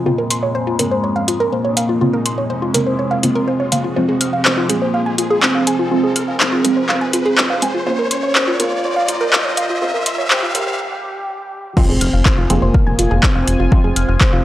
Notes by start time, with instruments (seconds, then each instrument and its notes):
Already playing: synth drone F2 G#3, analog synth pad C4, riser
0.06 synth stab C#3 A#3 C4, analog synth pad A#3, analog synth lead A#3, synth pluck F4
0.18 synth pluck A#4
0.30 synth pluck C6, closed hi-hat
0.43 synth pluck C#5
0.55 synth pluck C5
0.67 synth pluck F4
0.79 synth stab C#3 A#3 C4, analog synth lead G#3, synth pluck A#4, closed hi-hat
0.91 synth pluck C5
1.04 synth pluck C#5
1.16 synth pluck F5
1.28 synth pluck F4, closed hi-hat
1.40 synth pluck A#4
1.52 analog synth lead A#3, synth pluck C5
1.65 synth pluck C#5
1.77 synth pluck F5, closed hi-hat
1.89 synth pluck F4
2.01 synth stab C#3 A#3 C4, analog synth pad G#3, synth pluck F4
2.13 synth pluck A#4
2.26 synth pluck C6, closed hi-hat
2.38 synth pluck C#5
2.50 analog synth lead C4, synth pluck C5
2.62 synth pluck F4
2.74 synth stab C#3 A#3 C4, synth pluck A#4, closed hi-hat
2.87 synth pluck C5
2.99 synth pluck C#5
3.11 synth pluck F5
3.23 synth stab C#3 A#3 C4, synth pluck F4, closed hi-hat
3.35 synth pluck A#4
3.48 synth pluck C5
3.60 synth pluck C#5
3.72 synth stab C#3 A#3 C4, synth pluck F5, closed hi-hat
3.84 synth pluck F4
3.96 analog synth pad F3 C4 G#4, synth stab F3 G#3 C4, analog synth lead C4, synth pluck F4
4.09 synth pluck G#4
4.21 synth pluck F6, closed hi-hat
4.33 synth pluck F5
4.45 synth pluck C5, clap
4.57 synth pluck F4
4.69 synth stab F3 G#3 C4, analog synth lead A#3, synth pluck G#4, closed hi-hat
4.82 synth pluck C5
4.94 synth pluck F5
5.06 synth pluck G#5
5.18 synth pluck F4, closed hi-hat
5.30 synth pluck G#4
5.43 analog synth lead C4, synth pluck C5, clap
5.55 synth pluck F5
5.67 synth pluck G#5, closed hi-hat
5.79 synth pluck F4
5.91 synth stab F3 G#3 C4, synth pluck F4
6.04 synth pluck G#4
6.16 synth pluck F6, closed hi-hat
6.28 synth pluck F5
6.40 analog synth lead C4, synth pluck C5, clap
6.52 synth pluck F4
6.65 synth stab F3 G#3 C4, synth pluck G#4, closed hi-hat
6.77 synth pluck C5
6.89 synth pluck F5, clap
7.01 synth pluck G#5
7.13 synth pluck F4, closed hi-hat
7.26 synth pluck G#4
7.38 synth pluck C5, clap
7.50 synth pluck F5
7.62 synth stab F3 G#3 C4, synth pluck G#5, closed hi-hat
7.74 synth pluck F4
7.87 synth stab C#3 A#3 C5, analog synth pad A#3 C5, analog synth lead C#4, synth pluck F4
7.99 synth pluck A#4
8.11 synth pluck C6, closed hi-hat
8.23 synth pluck C#5
8.35 synth pluck C5, clap
8.48 synth pluck F4
8.60 synth stab C#3 A#3 C4, analog synth lead F4, synth pluck A#4, closed hi-hat
8.72 synth pluck C5
8.84 synth pluck C#5
8.96 synth pluck F5
9.09 synth pluck F4, closed hi-hat
9.21 synth pluck A#4
9.33 analog synth lead F4, synth pluck C5, clap
9.45 synth pluck C#5
9.57 synth pluck F5, closed hi-hat
9.69 synth pluck F4
9.82 synth stab C#3 A#3 C4, synth pluck F4
9.94 synth pluck A#4
10.06 synth pluck C6, closed hi-hat
10.18 synth pluck C#5
10.30 analog synth lead G4, synth pluck C5, clap
10.43 synth pluck F4
10.55 synth stab C#3 A#3 C4, synth pluck A#4, closed hi-hat
10.67 synth pluck C5
11.77 synth drone F2 G#3, synth stab F3 G#3 C4, analog synth lead C4, analog synth pad F4 C5 G#5, synth pluck F4 F5, kick, crash, impact
11.89 analog synth bass F1, synth pluck G#4 G#5
12.01 analog synth bass F1, synth pluck F6, closed hi-hat
12.13 analog synth bass F1, synth pluck F5 F6
12.26 synth pluck C5 C6, kick, clap
12.38 analog synth bass F1, synth pluck F4 F5
12.50 analog synth bass F1, synth stab F3 G#3 C4, analog synth lead A#3, synth pluck G#4 G#5, closed hi-hat
12.62 analog synth bass F1, synth pluck C5 C6
12.74 synth pluck F5 F6, kick
12.87 analog synth bass F1, synth pluck G#5 G#6
12.99 analog synth bass F1, synth pluck F4 F5, closed hi-hat
13.11 analog synth bass F1, synth pluck G#4 G#5
13.23 analog synth lead C4, synth pluck C5 C6, kick, clap
13.35 analog synth bass F1, synth pluck F5 F6
13.47 analog synth bass F1, synth pluck G#5 G#6, closed hi-hat
13.60 analog synth bass F1, synth pluck F4 F5
13.72 synth stab F3 G#3 C4, synth pluck F4 F5, kick
13.84 analog synth bass F1, synth pluck G#4 G#5
13.96 analog synth bass F1, synth pluck F6, closed hi-hat
14.08 analog synth bass F1, synth pluck F5 F6
14.21 analog synth lead C4, synth pluck C5 C6, kick, clap
14.33 analog synth bass F1, synth pluck F4 F5